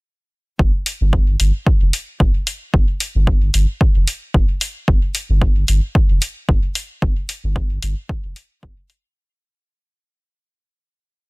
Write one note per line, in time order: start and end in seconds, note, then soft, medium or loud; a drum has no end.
0.59 0.71 G1 loud
0.59 kick loud
0.86 open hi-hat medium
1.01 1.35 G1 medium
1.13 kick medium
1.40 1.51 G1 medium
1.40 open hi-hat medium
1.67 kick loud
1.81 1.90 F1 medium
1.93 open hi-hat medium
2.20 2.31 G1 medium
2.20 kick medium
2.47 open hi-hat medium
2.74 2.85 G1 loud
2.74 kick loud
3.00 open hi-hat medium
3.15 3.49 G1 medium
3.27 kick loud
3.54 3.65 G1 medium
3.54 open hi-hat medium
3.81 kick loud
3.95 4.05 F1 medium
4.08 open hi-hat medium
4.34 4.46 G1 medium
4.34 kick loud
4.61 open hi-hat medium
4.88 4.99 G1 loud
4.88 kick loud
5.15 open hi-hat medium
5.29 5.64 G1 medium
5.42 kick loud
5.68 5.79 G1 medium
5.68 open hi-hat medium
5.95 kick loud
6.10 6.19 F1 medium
6.22 open hi-hat medium
6.49 6.60 G1 medium
6.49 kick loud
6.75 open hi-hat medium
7.02 7.13 G1 loud
7.02 kick loud
7.29 open hi-hat medium
7.44 7.78 G1 medium
7.56 kick loud
7.83 7.94 G1 medium
7.83 open hi-hat medium
8.09 kick loud
8.24 8.33 F1 medium
8.36 open hi-hat medium
8.63 8.74 G1 loud
8.63 kick loud
8.90 open hi-hat medium